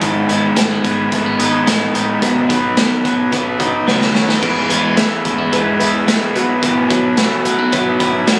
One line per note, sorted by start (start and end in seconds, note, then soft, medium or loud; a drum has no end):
0.00 0.24 G#1 loud
0.00 0.29 G#2 medium
0.00 2.22 G#2 medium
0.00 0.29 D#3 medium
0.00 0.29 G#3 medium
0.00 0.30 B3 medium
0.00 1.39 D#4 medium
0.00 0.29 G#4 medium
0.00 0.27 B4 medium
0.00 kick loud
0.00 closed hi-hat medium
0.29 0.51 G#1 medium
0.29 0.83 G#3 medium
0.29 0.56 G#3 medium
0.29 0.56 B3 medium
0.29 0.57 G#4 medium
0.29 0.56 B4 medium
0.29 closed hi-hat medium
0.56 0.79 G#1 loud
0.56 0.84 G#2 medium
0.56 0.84 D#3 medium
0.56 0.84 G#3 medium
0.56 0.71 A3 medium
0.56 0.85 B3 medium
0.56 0.84 G#4 loud
0.56 0.82 B4 medium
0.56 snare loud
0.56 closed hi-hat loud
0.71 1.11 B3 medium
0.84 1.07 G#1 medium
0.84 1.66 G#3 medium
0.84 1.10 G#3 soft
0.84 1.12 B3 soft
0.84 1.12 G#4 medium
0.84 1.12 B4 medium
0.84 kick medium
0.84 closed hi-hat medium
1.12 1.35 G#1 loud
1.12 1.39 G#3 medium
1.12 1.26 A3 medium
1.12 1.40 B3 medium
1.12 1.39 G#4 medium
1.12 1.38 B4 medium
1.12 kick medium
1.12 closed hi-hat medium
1.26 2.28 B3 soft
1.39 1.62 G#1 medium
1.39 1.67 G#3 soft
1.39 1.67 B3 soft
1.39 1.94 D#4 medium
1.39 1.67 G#4 soft
1.39 1.67 B4 medium
1.39 closed hi-hat medium
1.67 1.90 A1 medium
1.67 1.95 G#2 medium
1.67 1.95 D#3 medium
1.67 2.28 G#3 medium
1.67 1.95 G#3 medium
1.67 1.95 B3 medium
1.67 1.94 G#4 medium
1.67 1.93 B4 medium
1.67 snare loud
1.67 closed hi-hat medium
1.94 2.17 A1 medium
1.94 2.22 G#3 soft
1.94 2.22 B3 medium
1.94 2.22 D#4 medium
1.94 2.23 G#4 soft
1.94 2.22 B4 medium
1.94 closed hi-hat medium
2.22 2.45 B1 loud
2.22 2.50 B2 medium
2.22 4.43 B2 medium
2.22 2.50 D#3 medium
2.22 2.50 F#3 medium
2.22 2.50 B3 medium
2.22 3.59 D#4 medium
2.22 2.49 F#4 medium
2.22 2.48 B4 medium
2.22 kick medium
2.22 closed hi-hat medium
2.49 2.72 B1 medium
2.49 3.04 F#3 medium
2.49 2.77 F#3 soft
2.49 2.77 B3 medium
2.49 2.77 F#4 medium
2.49 2.77 B4 medium
2.49 kick loud
2.49 closed hi-hat medium
2.77 3.00 B1 loud
2.77 3.05 B2 medium
2.77 3.05 D#3 medium
2.77 3.05 F#3 medium
2.77 3.32 B3 medium
2.77 3.05 B3 loud
2.77 3.04 F#4 medium
2.77 3.03 B4 loud
2.77 snare loud
2.77 closed hi-hat medium
3.04 3.27 B1 loud
3.04 3.86 F#3 medium
3.04 3.30 F#3 soft
3.04 3.32 B3 soft
3.04 3.32 F#4 medium
3.04 3.32 B4 medium
3.04 kick medium
3.04 closed hi-hat medium
3.32 3.55 B1 loud
3.32 3.60 F#3 medium
3.32 5.25 B3 medium
3.32 3.60 B3 medium
3.32 3.59 F#4 medium
3.32 3.58 B4 medium
3.32 kick medium
3.32 closed hi-hat medium
3.59 3.82 B1 loud
3.59 3.87 F#3 soft
3.59 3.87 B3 medium
3.59 4.14 D#4 medium
3.59 3.88 F#4 medium
3.59 3.87 B4 medium
3.59 kick medium
3.59 closed hi-hat medium
3.87 4.15 C#2 medium
3.87 4.15 B2 medium
3.87 4.15 D#3 medium
3.87 4.48 F#3 medium
3.87 4.15 F#3 medium
3.87 4.15 B3 medium
3.87 4.14 F#4 medium
3.87 4.13 B4 medium
3.87 snare medium
4.01 snare medium
4.15 4.37 D#2 medium
4.15 4.43 F#3 soft
4.15 4.42 B3 soft
4.15 4.28 C#4 medium
4.15 4.43 F#4 medium
4.15 4.42 B4 medium
4.15 snare medium
4.28 4.48 D#4 medium
4.28 snare medium
4.42 4.65 E2 medium
4.42 6.35 E3 medium
4.42 4.70 E3 medium
4.42 4.70 G#3 medium
4.42 4.71 B3 medium
4.42 4.78 E4 medium
4.42 4.78 G#4 medium
4.42 4.70 G#4 medium
4.42 4.78 B4 medium
4.42 4.68 B4 medium
4.42 kick medium
4.42 crash medium
4.69 5.04 E2 medium
4.69 5.51 G#3 medium
4.69 4.97 B3 medium
4.69 4.97 G#4 medium
4.69 4.97 B4 medium
4.69 closed hi-hat medium
4.97 5.25 E3 medium
4.97 5.25 G#3 medium
4.97 5.25 B3 medium
4.97 5.33 E4 medium
4.97 5.80 E4 medium
4.97 5.33 G#4 medium
4.97 5.25 G#4 loud
4.97 5.33 B4 medium
4.97 5.23 B4 medium
4.97 snare loud
4.97 closed hi-hat medium
5.25 5.48 E2 medium
5.25 5.38 A3 soft
5.25 5.53 B3 soft
5.25 5.53 G#4 medium
5.25 5.52 B4 medium
5.25 kick medium
5.25 closed hi-hat medium
5.38 6.40 B3 medium
5.52 5.75 E2 medium
5.52 6.06 G#3 medium
5.52 5.80 G#3 medium
5.52 5.81 B3 medium
5.52 5.88 E4 loud
5.52 5.88 G#4 medium
5.52 5.80 G#4 medium
5.52 5.88 B4 loud
5.52 5.78 B4 medium
5.52 kick medium
5.52 closed hi-hat medium
5.80 6.03 E2 medium
5.80 6.07 B3 soft
5.80 6.93 E4 medium
5.80 6.08 G#4 soft
5.80 6.07 B4 medium
5.80 closed hi-hat medium
6.07 6.30 B1 medium
6.07 6.35 E3 medium
6.07 6.41 G#3 medium
6.07 6.35 G#3 medium
6.07 6.35 B3 medium
6.07 6.34 E4 medium
6.07 6.35 G#4 medium
6.07 6.35 B4 medium
6.07 6.33 B4 medium
6.07 snare loud
6.07 closed hi-hat medium
6.34 6.80 B1 loud
6.34 6.62 B2 medium
6.34 6.62 F#3 soft
6.34 6.62 B3 medium
6.34 7.01 E4 medium
6.34 6.63 F#4 medium
6.34 7.02 F#4 medium
6.34 6.62 B4 medium
6.34 7.02 B4 loud
6.34 closed hi-hat medium
6.63 6.90 B2 medium
6.63 8.40 B2 medium
6.63 6.90 E3 medium
6.63 6.91 F#3 medium
6.63 6.90 B3 medium
6.63 6.89 F#4 medium
6.63 6.88 B4 medium
6.63 kick loud
6.63 closed hi-hat medium
6.90 7.24 B1 loud
6.90 7.71 F#3 medium
6.90 7.17 F#3 medium
6.90 7.18 B3 medium
6.90 7.18 F#4 medium
6.90 7.17 B4 medium
6.90 kick loud
6.90 closed hi-hat medium
7.17 7.45 B2 medium
7.17 7.45 E3 medium
7.17 7.46 F#3 medium
7.17 7.45 B3 medium
7.17 7.53 E4 medium
7.17 8.00 E4 medium
7.17 7.53 F#4 medium
7.17 7.44 F#4 medium
7.17 7.54 B4 medium
7.17 7.43 B4 medium
7.17 snare loud
7.17 closed hi-hat medium
7.44 7.68 B1 medium
7.44 7.71 F#3 soft
7.44 7.59 A3 medium
7.44 7.72 B3 medium
7.44 7.73 F#4 medium
7.44 7.72 B4 medium
7.44 closed hi-hat medium
7.59 8.40 B3 medium
7.72 7.95 B1 medium
7.72 8.00 F#3 medium
7.72 8.26 F#3 medium
7.72 8.00 B3 medium
7.72 8.08 E4 medium
7.72 8.08 F#4 medium
7.72 8.00 F#4 medium
7.72 8.08 B4 loud
7.72 7.99 B4 medium
7.72 kick medium
7.72 closed hi-hat medium
8.00 8.23 B1 medium
8.00 8.27 F#3 soft
8.00 8.27 B3 soft
8.00 8.40 E4 medium
8.00 8.28 F#4 medium
8.00 8.27 B4 medium
8.00 kick medium
8.00 closed hi-hat medium
8.27 8.40 B1 loud
8.27 8.40 B2 medium
8.27 8.40 E3 medium
8.27 8.40 F#3 medium
8.27 8.40 B3 medium
8.27 8.40 E4 medium
8.27 8.40 F#4 medium
8.27 8.40 B4 medium
8.27 snare loud
8.27 closed hi-hat medium